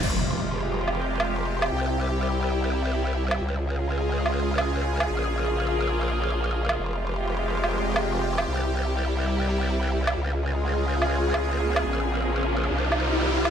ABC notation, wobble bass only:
X:1
M:4/4
L:1/8
Q:"Swing 16ths" 1/4=142
K:Fm
V:1 name="Wobble bass" clef=bass
F,,,8 | C,,8 | D,,8 | B,,,8 |
F,,,8 | C,,8 | D,,8 | B,,,4 C,,4 |]